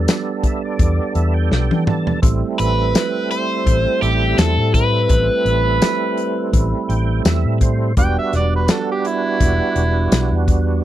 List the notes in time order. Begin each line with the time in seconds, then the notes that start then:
Already playing: G3 B3 D4 A4
0.08 snare, closed hi-hat, tambourine
0.43 E5, kick, closed hi-hat
0.65 D5
0.79 E2 D5, kick, closed hi-hat
1.15 E2 E5, closed hi-hat
1.34 G5
1.51 B1 G5, snare
1.71 E3, high tom
1.87 A5, mid tom
2.07 floor tom
2.22 A1 G3 A3 C4 E4, kick, closed hi-hat
2.59 A1 B4, closed hi-hat
2.95 snare, closed hi-hat, tambourine
3.31 C5, closed hi-hat
3.66 A1, kick, closed hi-hat
4.02 A1 G4, closed hi-hat
4.38 E2 A4, snare, closed hi-hat, tambourine
4.58 A2
4.74 B4, kick, closed hi-hat
5.09 A1, kick, closed hi-hat
5.45 A1, closed hi-hat
5.82 snare, closed hi-hat, tambourine
6.18 closed hi-hat
6.53 A1, kick, closed hi-hat
6.89 A1 G5, closed hi-hat
7.25 E2 E5, snare, closed hi-hat, tambourine
7.45 A2
7.61 C5, kick, closed hi-hat
7.97 E1 G3 B3 D4 F#4 G5, kick, closed hi-hat
8.19 E5
8.33 E1 D5, snare, closed hi-hat
8.56 B4
8.68 A4, snare, closed hi-hat, tambourine
8.92 G4
9.05 E4, closed hi-hat
9.40 E1, kick, closed hi-hat
9.76 E1, closed hi-hat
10.12 B1, snare, closed hi-hat, tambourine
10.31 E2
10.48 kick, closed hi-hat